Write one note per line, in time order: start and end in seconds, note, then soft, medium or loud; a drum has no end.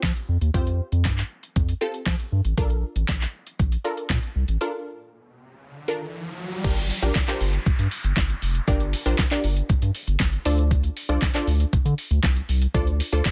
0.00 0.12 F3 medium
0.00 0.32 C4 medium
0.00 0.32 F4 medium
0.00 0.32 G4 medium
0.00 0.32 C5 medium
0.00 kick loud
0.00 clap loud
0.00 closed hi-hat medium
0.04 snare medium
0.16 closed hi-hat medium
0.29 0.38 F2 loud
0.41 0.50 D#2 medium
0.41 closed hi-hat medium
0.54 0.81 F2 loud
0.54 1.26 C4 medium
0.54 1.26 F4 medium
0.54 1.26 G4 medium
0.54 1.27 C5 loud
0.54 kick loud
0.54 closed hi-hat medium
0.67 closed hi-hat soft
0.92 1.07 F2 medium
0.92 closed hi-hat medium
1.05 1.23 G2 medium
1.05 kick loud
1.05 snare medium
1.05 clap loud
1.05 closed hi-hat medium
1.18 clap medium
1.18 closed hi-hat soft
1.43 closed hi-hat medium
1.56 1.74 F2 loud
1.56 kick loud
1.56 closed hi-hat medium
1.69 closed hi-hat medium
1.81 2.35 C4 medium
1.81 2.35 F4 medium
1.81 2.35 G4 medium
1.81 2.35 A4 loud
1.94 closed hi-hat medium
2.06 2.15 F3 loud
2.06 kick loud
2.06 snare medium
2.06 clap loud
2.06 closed hi-hat medium
2.19 closed hi-hat medium
2.32 2.41 G2 loud
2.45 2.54 A1 medium
2.45 closed hi-hat medium
2.57 2.84 A#1 loud
2.57 3.30 D4 medium
2.57 3.30 F4 medium
2.57 3.30 A4 medium
2.57 3.30 A#4 loud
2.57 kick loud
2.57 closed hi-hat medium
2.70 closed hi-hat soft
2.96 3.05 A1 medium
2.96 closed hi-hat medium
3.08 3.26 A#1 medium
3.08 kick loud
3.08 snare medium
3.08 clap loud
3.08 closed hi-hat medium
3.21 clap medium
3.21 closed hi-hat soft
3.47 closed hi-hat medium
3.59 3.77 A#1 medium
3.59 kick loud
3.59 closed hi-hat medium
3.72 closed hi-hat medium
3.84 4.39 D4 medium
3.84 4.39 F4 medium
3.84 4.39 A4 medium
3.84 4.39 A#4 loud
3.97 closed hi-hat medium
4.10 4.19 A#2 medium
4.10 kick loud
4.10 snare medium
4.10 clap loud
4.10 closed hi-hat medium
4.23 closed hi-hat medium
4.36 4.44 C2 loud
4.48 4.57 A1 medium
4.48 closed hi-hat medium
4.61 5.33 D4 medium
4.61 5.33 F4 medium
4.61 5.33 A4 medium
4.61 5.33 A#4 medium
4.61 riser medium
5.88 6.42 D4 medium
5.88 6.42 F4 medium
5.88 6.42 A4 medium
5.88 6.42 A#4 loud
6.64 6.91 G1 loud
6.64 6.91 D4 medium
6.64 6.91 F4 medium
6.64 6.91 G4 medium
6.64 6.92 A#4 medium
6.64 6.92 D5 loud
6.64 kick loud
6.64 closed hi-hat medium
6.64 crash loud
6.64 downlifter medium
6.64 shaker medium
6.77 closed hi-hat soft
6.77 shaker medium
6.90 open hi-hat medium
6.90 shaker medium
7.02 7.11 A#1 medium
7.02 7.20 D4 medium
7.02 7.21 F4 medium
7.02 7.21 G4 medium
7.02 7.21 A#4 medium
7.02 7.21 D5 loud
7.02 closed hi-hat medium
7.02 shaker medium
7.15 kick loud
7.15 snare medium
7.15 clap loud
7.15 closed hi-hat medium
7.15 shaker medium
7.28 8.00 D4 medium
7.28 8.00 F4 medium
7.28 8.00 G4 medium
7.28 8.00 A#4 medium
7.28 8.00 C5 loud
7.28 clap medium
7.28 closed hi-hat medium
7.28 shaker soft
7.41 7.58 G1 loud
7.41 open hi-hat medium
7.41 shaker medium
7.53 closed hi-hat medium
7.53 shaker medium
7.66 7.71 G2 medium
7.66 kick loud
7.66 closed hi-hat medium
7.66 shaker medium
7.79 7.88 G2 loud
7.79 closed hi-hat medium
7.79 shaker medium
7.91 open hi-hat medium
7.91 shaker medium
8.04 8.13 G1 medium
8.04 closed hi-hat medium
8.04 shaker medium
8.17 8.34 G1 loud
8.17 kick loud
8.17 snare loud
8.17 clap loud
8.17 closed hi-hat medium
8.17 shaker medium
8.30 closed hi-hat medium
8.30 shaker medium
8.42 8.60 F1 loud
8.42 open hi-hat medium
8.42 shaker medium
8.55 closed hi-hat medium
8.55 shaker medium
8.68 8.94 G1 loud
8.68 8.95 D4 medium
8.68 8.95 F4 medium
8.68 8.95 G4 medium
8.68 8.95 A#4 medium
8.68 8.95 D5 loud
8.68 kick loud
8.68 closed hi-hat medium
8.68 shaker medium
8.80 closed hi-hat medium
8.80 shaker soft
8.93 open hi-hat medium
8.93 shaker medium
9.06 9.15 A#1 medium
9.06 9.24 D4 medium
9.06 9.24 F4 medium
9.06 9.24 G4 medium
9.06 9.24 A#4 medium
9.06 9.24 C5 loud
9.06 closed hi-hat medium
9.06 shaker medium
9.18 kick loud
9.18 snare loud
9.18 clap loud
9.18 closed hi-hat medium
9.18 shaker medium
9.31 10.03 D4 medium
9.31 10.03 F4 medium
9.31 10.03 G4 medium
9.31 10.04 A#4 medium
9.31 10.04 D5 loud
9.31 clap medium
9.31 closed hi-hat soft
9.31 shaker medium
9.44 9.62 G1 medium
9.44 open hi-hat medium
9.44 shaker medium
9.56 closed hi-hat medium
9.56 shaker medium
9.69 9.75 G2 medium
9.69 kick loud
9.69 closed hi-hat medium
9.69 shaker medium
9.82 9.91 G2 loud
9.82 closed hi-hat medium
9.82 shaker medium
9.95 open hi-hat medium
9.95 shaker medium
10.07 10.16 G1 medium
10.07 closed hi-hat medium
10.07 shaker medium
10.20 10.38 G1 loud
10.20 kick loud
10.20 snare loud
10.20 clap loud
10.20 closed hi-hat medium
10.20 shaker medium
10.33 closed hi-hat medium
10.33 shaker medium
10.45 10.90 D2 loud
10.45 10.96 D4 medium
10.45 10.96 F4 medium
10.45 10.97 A4 medium
10.45 10.97 C5 medium
10.45 10.97 D5 loud
10.45 open hi-hat medium
10.45 shaker medium
10.58 closed hi-hat medium
10.58 shaker medium
10.71 kick loud
10.71 closed hi-hat medium
10.71 shaker medium
10.83 closed hi-hat medium
10.83 shaker soft
10.97 open hi-hat medium
10.97 shaker medium
11.09 11.18 C2 medium
11.09 11.27 D4 medium
11.09 11.27 F4 medium
11.09 11.27 A4 medium
11.09 11.27 C5 medium
11.09 11.27 D5 loud
11.09 closed hi-hat medium
11.09 shaker medium
11.22 kick loud
11.22 snare loud
11.22 clap loud
11.22 closed hi-hat medium
11.22 shaker medium
11.34 12.07 D4 medium
11.34 12.07 F4 medium
11.34 12.07 A4 medium
11.34 12.07 C5 medium
11.34 12.07 D5 loud
11.34 clap medium
11.34 closed hi-hat soft
11.34 shaker medium
11.47 11.65 D2 loud
11.47 open hi-hat medium
11.47 shaker medium
11.60 closed hi-hat medium
11.60 shaker medium
11.73 11.78 D3 medium
11.73 kick loud
11.73 closed hi-hat medium
11.73 shaker medium
11.85 11.94 D3 loud
11.85 closed hi-hat medium
11.85 shaker medium
11.98 open hi-hat medium
11.98 shaker medium
12.11 12.20 D2 medium
12.11 closed hi-hat medium
12.11 shaker medium
12.23 12.41 C2 medium
12.23 kick loud
12.23 snare loud
12.23 clap loud
12.23 closed hi-hat medium
12.23 shaker medium
12.36 closed hi-hat medium
12.36 shaker medium
12.49 12.67 C2 loud
12.49 open hi-hat medium
12.49 shaker medium
12.62 closed hi-hat medium
12.62 shaker medium
12.74 13.01 D2 loud
12.74 13.01 D4 medium
12.74 13.02 F4 medium
12.74 13.02 A4 medium
12.74 13.02 C5 medium
12.74 13.02 D5 loud
12.74 kick loud
12.74 closed hi-hat medium
12.74 shaker medium
12.87 closed hi-hat medium
12.87 shaker medium
13.00 open hi-hat medium
13.00 shaker medium
13.12 13.21 D2 medium
13.12 13.31 D4 medium
13.12 13.31 F4 medium
13.12 13.31 A4 medium
13.12 13.31 C5 medium
13.12 13.31 D5 loud
13.12 closed hi-hat medium
13.12 shaker medium
13.25 kick loud
13.25 snare medium
13.25 clap loud
13.25 closed hi-hat medium
13.25 shaker medium